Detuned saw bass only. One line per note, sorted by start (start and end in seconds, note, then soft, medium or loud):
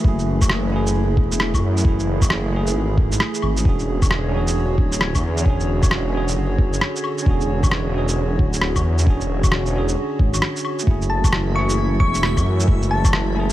0.04 1.16 F#1 loud
1.17 1.56 E1 medium
1.54 1.84 F#2 medium
1.85 2.74 F#1 loud
2.75 3.19 G#1 medium
3.43 3.64 G#1 medium
3.65 4.77 E1 loud
4.78 5.17 D1 medium
5.15 5.45 E2 medium
5.46 6.35 E1 loud
6.36 6.80 F#1 medium
7.26 8.38 E1 loud
8.39 8.77 D1 medium
8.76 9.06 E2 medium
9.07 9.96 E1 loud
10.20 10.41 G#1 medium
10.87 11.99 F#1 loud
12.00 12.39 E1 medium
12.37 12.67 F#2 medium
12.68 13.53 F#1 loud